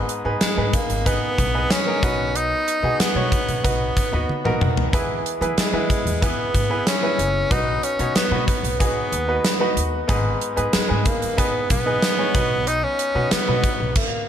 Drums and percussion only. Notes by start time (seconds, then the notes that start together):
0.09 closed hi-hat
0.41 snare, closed hi-hat
0.73 kick, closed hi-hat
0.90 closed hi-hat
1.06 kick, closed hi-hat
1.38 kick, closed hi-hat
1.71 snare, closed hi-hat
2.03 kick, closed hi-hat
2.35 closed hi-hat
2.68 closed hi-hat
3.00 snare, closed hi-hat
3.32 kick, closed hi-hat
3.48 closed hi-hat
3.65 kick, closed hi-hat
3.97 kick, closed hi-hat
4.29 high tom
4.45 mid tom
4.61 mid tom
4.77 floor tom
4.93 kick, closed hi-hat
5.26 closed hi-hat
5.42 closed hi-hat
5.58 snare, closed hi-hat
5.90 kick, closed hi-hat
6.07 closed hi-hat
6.22 kick, closed hi-hat
6.55 kick, closed hi-hat
6.87 snare, closed hi-hat
7.19 closed hi-hat
7.51 kick, closed hi-hat
7.83 closed hi-hat
7.99 closed hi-hat
8.16 snare, closed hi-hat
8.48 kick, closed hi-hat
8.64 closed hi-hat
8.80 kick, closed hi-hat
9.12 closed hi-hat
9.45 snare, closed hi-hat
9.77 closed hi-hat
10.09 kick, closed hi-hat
10.41 closed hi-hat
10.57 closed hi-hat
10.73 snare, closed hi-hat
11.05 kick, closed hi-hat
11.22 closed hi-hat
11.38 kick, closed hi-hat
11.70 kick, closed hi-hat
12.02 snare, closed hi-hat
12.35 kick, closed hi-hat
12.67 closed hi-hat
12.99 closed hi-hat
13.31 snare, closed hi-hat
13.64 kick, closed hi-hat
13.95 kick, crash